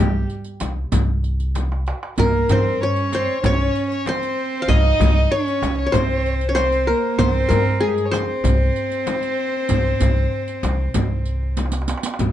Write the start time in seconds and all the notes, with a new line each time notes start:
Already playing: G3 G4
0.00 C2
0.30 riq, darbuka ka
0.44 riq, darbuka ka
0.60 C2, riq, darbuka tek, frame drum
0.92 C2, riq, frame drum, darbuka dum
1.23 riq, darbuka ka
1.40 riq, darbuka ka
1.55 riq, darbuka tek, frame drum
1.72 darbuka ka
1.87 riq, darbuka tek
2.03 darbuka ka
2.18 C2 A#3 A#4, riq, frame drum, darbuka dum
2.35 darbuka ka
2.49 G2 C4 C5, riq, frame drum, darbuka dum
2.80 C#4 C#5
2.96 riq, darbuka ka
3.12 C4 C5, riq, frame drum
3.43 C2 C#4 C#5, riq, frame drum, darbuka dum
3.75 riq, darbuka ka
3.91 C#5, riq, darbuka ka
4.05 C4 C5, riq, darbuka tek, frame drum
4.22 riq, darbuka ka
4.37 darbuka ka
4.62 F5
4.68 C2 D#4 D#5, riq, darbuka dum, frame drum
4.84 darbuka ka
5.00 C2, riq, darbuka dum, frame drum
5.15 D#5
5.31 C#4 C#5
5.47 riq, darbuka ka
5.62 C2, riq, darbuka tek, frame drum
5.78 C#5
5.86 C#5
5.92 C2 C4 C5, riq, frame drum, darbuka dum
6.25 riq, darbuka ka
6.41 riq
6.49 C#4 C#5
6.55 C4 C5, riq, darbuka tek, frame drum
6.72 riq, darbuka ka
6.87 A#3 A#4
7.18 C2 C4 C5, riq, frame drum, darbuka dum
7.35 darbuka ka
7.49 G2 A#4, riq, frame drum, darbuka dum
7.80 G#3 G#4
7.88 G4
7.94 G#4, riq, darbuka ka
8.06 C#5
8.11 C4 C5, riq, darbuka tek, frame drum
8.44 C2, riq, frame drum, darbuka dum
8.76 riq, darbuka ka
8.92 riq, darbuka ka
9.07 riq, darbuka tek, frame drum
9.23 riq, darbuka ka
9.39 darbuka ka
9.69 C2, riq, frame drum, darbuka dum
9.86 darbuka ka
10.00 C2, riq, frame drum, darbuka dum
10.33 darbuka ka
10.48 riq, darbuka ka
10.63 C2, riq, darbuka tek, frame drum
10.94 C2, riq, frame drum, darbuka dum
11.25 riq, darbuka ka
11.43 darbuka ka
11.57 riq, darbuka tek, frame drum
11.66 darbuka ka
11.72 riq, darbuka tek
11.82 darbuka ka
11.88 riq, darbuka tek
11.98 darbuka ka
12.03 riq, darbuka tek
12.14 darbuka ka
12.19 C2, riq, frame drum, darbuka dum